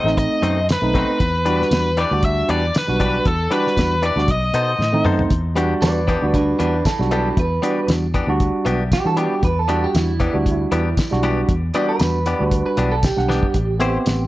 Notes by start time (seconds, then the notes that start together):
Already playing: D#5
0.04 A1 A3 C4 D#4, snare
0.17 D#5, kick, closed hi-hat
0.42 F#2 B2 A3 C4 D#4, closed hi-hat
0.69 B4, snare, closed hi-hat, tambourine
0.82 B1 A3 C4 D#4
0.94 B2 A3 C4 D#4, kick, closed hi-hat
0.99 B4
1.20 E2, kick, closed hi-hat
1.45 E3 G3 D4 F#4 G4 B4, closed hi-hat
1.62 snare
1.71 E2, snare, closed hi-hat, tambourine
1.97 E3 D4 G4 B4 D5, closed hi-hat
2.11 D2 G3 D4 F#4
2.23 E5, kick, closed hi-hat
2.49 E2 E3 D4 G4 B4 D5, closed hi-hat
2.75 B4, snare, closed hi-hat, tambourine
2.87 B1 G3 D4 F#4
3.00 E3 D4 G4 B4, kick, closed hi-hat
3.25 E2 A4, kick, closed hi-hat
3.51 E3 G3 D4 F#4 G4 B4, closed hi-hat
3.67 snare
3.77 E2, kick, snare, closed hi-hat, tambourine
4.02 E3 D4 G4 B4 D5, closed hi-hat
4.16 D2 G3 D4 F#4, snare
4.28 B1 D#5, kick, closed hi-hat
4.53 B2 B3 D#4 A4 C5, closed hi-hat
4.79 A2, snare
4.93 A3 C4 D#4, high tom
5.05 F#2 B3 D#4 A4 C5, mid tom
5.19 floor tom
5.30 E2, kick, closed hi-hat
5.55 E3 G3 B3 D4 F#4 G4, closed hi-hat
5.82 E2 B4 D5, snare, closed hi-hat, tambourine
6.07 E3 B3 D4 G4 B4 D5, kick, closed hi-hat
6.21 D2 G3 D4 F#4
6.34 D4 B4, kick, closed hi-hat
6.59 E2 E3 B3 D4 G4 B4, closed hi-hat
6.85 E4 A4, kick, snare, closed hi-hat, tambourine
6.99 B1 G3 D4 F#4, snare
7.11 E3 B3 D4 E4 G4 A4, closed hi-hat
7.37 E2 B4, kick, closed hi-hat
7.62 E3 G3 B3 D4 F#4 G4, closed hi-hat
7.88 E2, snare, closed hi-hat, tambourine
8.14 E3 B3 D4 G4, kick, closed hi-hat
8.27 D2 G3 D4 F#4
8.40 kick, closed hi-hat
8.65 B1 E3 B3 D4 G4, closed hi-hat
8.92 G4, kick, snare, closed hi-hat, tambourine
9.05 E3 G3 D4 F#4 A4
9.17 E3 B3 D4 G4, closed hi-hat
9.43 E2 B4, kick, closed hi-hat
9.59 A4
9.68 E3 G3 B3 D4 F#4 G4, closed hi-hat
9.84 G4
9.94 E2 E4, snare, closed hi-hat, tambourine
10.20 E3 B3 D4 G4, kick, closed hi-hat
10.33 D2 G3 D4 F#4
10.46 kick, closed hi-hat
10.72 E2 E3 B3 D4 G4, closed hi-hat
10.97 kick, snare, closed hi-hat, tambourine
11.11 B1 G3 D4 F#4, snare
11.23 E3 B3 D4 G4, closed hi-hat
11.49 E2, kick, closed hi-hat
11.74 E3 G3 B3 D4 F#4 G4 D5, closed hi-hat
11.89 B4
12.00 E2, snare, closed hi-hat, tambourine
12.26 E3 B3 D4 G4, closed hi-hat
12.39 D2 G3 D4 F#4
12.51 kick, closed hi-hat
12.66 B4
12.77 B1 E3 B3 D4 G4, closed hi-hat
12.92 A4
13.03 G4, kick, snare, closed hi-hat, tambourine
13.17 B1 G3 D4 F#5, snare
13.29 E3 B3 D4 G4, snare
13.43 kick
13.54 A1, kick, closed hi-hat
13.79 A3 B3 C4 E4 G4 C5, closed hi-hat
14.06 A1, snare, closed hi-hat, tambourine